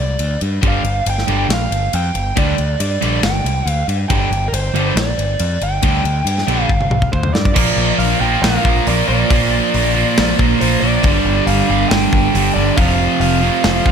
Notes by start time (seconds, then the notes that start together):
Already playing: D5
0.00 C2
0.19 D2, ride
0.41 G2, ride
0.63 G1 G2 D3 G3, kick, ride
0.68 F5
0.83 G1, ride
1.06 G1 G5, ride
1.18 snare
1.27 G1 G2 D3 G3, ride
1.49 A#1, snare, ride
1.53 F5
1.71 G1, ride
1.93 F2 G5, ride
2.15 G1, ride
2.36 D2 G2 D3 G3 D5, kick, ride
2.58 D2, ride
2.80 G2 D5, ride
3.01 A#1 G2 D3 G3, ride
3.23 G1 G5, snare, ride
3.44 C2, ride
3.66 D2, ride
3.70 F5
3.88 G2, ride
4.09 G1 G2 D3 G3 G5, kick, ride
4.31 G1, ride
4.48 A#4
4.52 G1 C5, ride
4.74 G1 G2 D3 G3, ride
4.96 A#1 D5, snare, ride
5.18 G1, ride
5.39 F2, ride
5.61 G1 G5, ride
5.82 D2 G2 D3 G3, kick, ride
6.04 D2, ride
6.25 G2, ride
6.38 snare
6.47 A#1 G2 D3 G3, ride
6.61 F5
6.69 G1, kick
6.81 high tom
6.90 C2, mid tom
7.02 kick
7.12 D2 C5, kick
7.23 mid tom
7.34 G2 D5, snare
7.45 kick
7.54 A#1 A#2 F3 A#3 D5, kick, crash
7.77 A#1
7.98 A#1 F5, open hi-hat
8.20 A#1 A#2 F3 A#3 G5
8.42 A#1 F5, snare, open hi-hat
8.65 A#1, kick
8.86 A#1 A#2 F3 D5, open hi-hat
8.90 A#3
9.07 A#1 A#2 F3 A#3 D5
9.30 A#1 A#2 F3, kick, open hi-hat
9.34 A#3
9.74 A#1, open hi-hat
9.94 A#2 F3 A#3
10.17 A#1, snare, open hi-hat
10.39 A#1, kick
10.59 A#1 A#2 F3 A#3 C5, open hi-hat
10.80 A#1 F3 A#3 D5
10.85 A#2
11.03 G1 G2 D3 D5, kick, open hi-hat
11.08 G3
11.25 G1
11.46 G1 F5, open hi-hat
11.68 G1 G2 D3 G3
11.89 G1 G5, snare, open hi-hat
12.13 G1, kick
12.33 G1 G2 D3 G3, open hi-hat
12.54 G1 D3 G3 D5
12.59 G2
12.76 F1 F2 C3 F3 F5, kick, open hi-hat
13.20 F1 F5, open hi-hat
13.41 F2 C3 F3
13.64 F1, snare, open hi-hat
13.86 F1, kick